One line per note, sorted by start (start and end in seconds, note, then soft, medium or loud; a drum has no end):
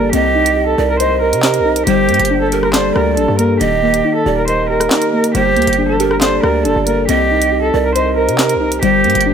0.00 0.12 F#1 loud
0.00 0.15 G3 medium
0.00 0.15 A#3 medium
0.00 0.15 D4 medium
0.00 0.15 G4 medium
0.00 0.13 A4 loud
0.13 0.76 C2 loud
0.13 1.22 C4 medium
0.13 0.64 G4 medium
0.13 0.74 D#5 loud
0.13 closed hi-hat medium
0.35 1.44 D#4 medium
0.46 closed hi-hat medium
0.56 1.43 G4 medium
0.67 0.84 A4 medium
0.78 1.34 C2 loud
0.78 1.20 A#4 medium
0.78 0.99 D5 medium
0.90 0.98 A#4 medium
1.00 1.17 C5 medium
1.00 1.87 C5 loud
1.00 1.83 D#5 medium
1.00 closed hi-hat medium
1.22 1.83 A#4 medium
1.22 1.87 A#4 medium
1.33 1.61 C3 loud
1.33 closed hi-hat medium
1.43 1.87 G4 medium
1.43 snare loud
1.43 clap medium
1.54 closed hi-hat medium
1.60 1.86 C2 loud
1.65 1.87 D#4 medium
1.76 closed hi-hat medium
1.87 2.10 G1 loud
1.87 2.96 G3 loud
1.87 2.38 G4 loud
1.87 2.48 C5 loud
1.87 closed hi-hat medium
2.09 2.19 G2 loud
2.09 3.18 A#3 medium
2.09 closed hi-hat soft
2.14 closed hi-hat medium
2.20 2.93 G1 loud
2.20 closed hi-hat medium
2.25 closed hi-hat medium
2.30 3.16 D4 medium
2.42 2.59 A4 medium
2.52 2.94 G4 medium
2.52 2.73 A#4 medium
2.52 closed hi-hat medium
2.63 2.71 A#4 medium
2.63 cross-stick medium
2.73 3.61 A4 loud
2.73 2.91 C5 medium
2.73 3.31 D5 loud
2.73 snare loud
2.73 clap loud
2.73 closed hi-hat medium
2.95 3.19 D2 loud
2.95 3.61 G4 medium
2.95 3.13 A#4 medium
2.95 cross-stick loud
3.17 3.28 A#1 loud
3.17 3.61 D4 medium
3.17 3.34 A4 medium
3.17 closed hi-hat medium
3.28 3.60 G2 loud
3.39 3.61 A#3 medium
3.39 3.56 A#4 medium
3.39 closed hi-hat medium
3.60 4.03 D#1 loud
3.60 4.69 D#3 loud
3.60 4.12 G4 medium
3.60 4.22 D#5 loud
3.60 closed hi-hat medium
3.83 4.91 A#3 medium
3.94 closed hi-hat medium
4.05 4.90 D#4 medium
4.16 4.33 A4 medium
4.26 4.89 D#1 loud
4.26 4.69 G4 medium
4.26 4.47 D5 medium
4.37 4.46 A#4 medium
4.48 5.35 A#4 loud
4.48 4.65 C5 medium
4.48 5.31 D#5 medium
4.48 closed hi-hat medium
4.70 5.35 G4 medium
4.70 5.31 A#4 medium
4.80 cross-stick medium
4.80 closed hi-hat medium
4.91 5.35 D#4 medium
4.91 snare loud
4.91 clap medium
5.02 closed hi-hat medium
5.13 5.35 A#3 medium
5.24 closed hi-hat medium
5.35 5.58 G1 loud
5.35 6.43 G3 medium
5.35 5.86 G4 loud
5.35 5.96 C5 loud
5.35 closed hi-hat medium
5.56 5.67 D2 loud
5.56 6.65 A#3 medium
5.56 closed hi-hat soft
5.62 closed hi-hat medium
5.67 6.40 G1 loud
5.67 closed hi-hat medium
5.73 closed hi-hat medium
5.78 6.64 D4 medium
5.89 6.06 A4 medium
6.00 6.43 G4 medium
6.00 6.20 A#4 medium
6.00 closed hi-hat medium
6.11 6.19 A#4 medium
6.11 cross-stick medium
6.21 7.09 A4 loud
6.21 6.39 C5 medium
6.21 7.05 D5 medium
6.21 snare loud
6.21 clap loud
6.21 closed hi-hat medium
6.43 6.67 D2 loud
6.43 7.09 G4 medium
6.43 6.61 A#4 medium
6.43 cross-stick loud
6.65 6.76 F#1 loud
6.65 7.09 D4 medium
6.65 6.83 A4 medium
6.65 closed hi-hat medium
6.76 6.99 G1 loud
6.87 7.09 A#3 medium
6.87 7.04 A#4 medium
6.87 closed hi-hat medium
6.98 7.08 F#1 loud
7.08 7.71 C2 loud
7.08 8.17 C4 medium
7.08 7.60 G4 medium
7.08 7.70 D#5 loud
7.08 closed hi-hat medium
7.31 8.39 D#4 medium
7.42 closed hi-hat medium
7.52 8.38 G4 medium
7.63 7.80 A4 medium
7.74 8.30 C2 loud
7.74 8.16 A#4 medium
7.74 7.94 D5 medium
7.86 7.94 A#4 medium
7.95 8.13 C5 medium
7.95 8.82 C5 loud
7.95 8.53 D#5 medium
7.95 closed hi-hat medium
8.17 8.83 A#4 medium
8.17 8.79 A#4 medium
8.28 8.57 C3 loud
8.28 closed hi-hat medium
8.38 8.83 G4 medium
8.38 snare loud
8.38 clap medium
8.49 closed hi-hat medium
8.55 8.81 C2 loud
8.61 8.83 D#4 medium
8.72 closed hi-hat medium
8.82 9.06 G1 loud
8.82 9.34 G3 loud
8.82 9.34 G4 loud
8.82 9.34 C5 loud
8.82 closed hi-hat medium
9.04 9.15 G2 loud
9.04 9.34 A#3 medium
9.04 closed hi-hat soft
9.10 closed hi-hat medium
9.15 9.34 G1 loud
9.15 closed hi-hat medium
9.21 closed hi-hat medium
9.26 9.34 D4 medium